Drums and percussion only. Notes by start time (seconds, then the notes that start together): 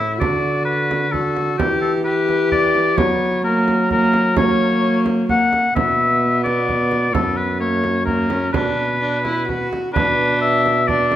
0.21 frame drum
0.91 frame drum
1.14 frame drum
1.37 frame drum
1.60 frame drum
2.29 frame drum
2.52 frame drum
2.75 frame drum
2.98 frame drum
3.68 frame drum
3.91 frame drum
4.13 frame drum
4.36 frame drum
5.06 frame drum
5.29 frame drum
5.53 frame drum
5.76 frame drum
6.46 frame drum
6.69 frame drum
6.92 frame drum
7.15 frame drum
7.84 frame drum
8.07 frame drum
8.30 frame drum
8.54 frame drum
9.25 frame drum
9.49 frame drum
9.73 frame drum
9.96 frame drum
10.66 frame drum
10.88 frame drum
11.12 frame drum